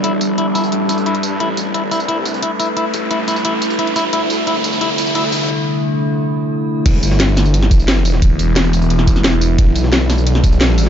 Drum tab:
CC |----------------|----------------|----------------|----------------|
RD |----------------|----------------|----------------|----------------|
HH |x-x-x-x-x-x-xxx-|x-x-x-x-x-x-x-x-|x-x-x-x-x-x-xxx-|x-x-x-x-x-x-x-x-|
TB |--x---xx--xx--x-|--x---xx--xx--x-|--x---xx--xx--x-|--x---xx--xx--x-|
SD |----------------|----------------|----------------|----------------|
BD |----------------|----------------|----------------|----------------|

CC |----------------|x---------------|----------------|----------------|
RD |----------------|x-x-x-x-x-xxx-x-|x-x-x-x-x-x-xxx-|x-x-x-x-x-xxx-x-|
HH |----------------|x-x-x-o-x-x-x-o-|x-x-x-o-x-x-x-o-|x-x-x-o-x-x-x-o-|
TB |----------------|--x---xx--xx--x-|--x---xx--xx--x-|--x---xx--xx--x-|
SD |----------------|---oo-o--o--o--o|----o----ooooo--|---oo-o--o--o---|
BD |----------------|o---------o-----|o---------o-----|o---------o-----|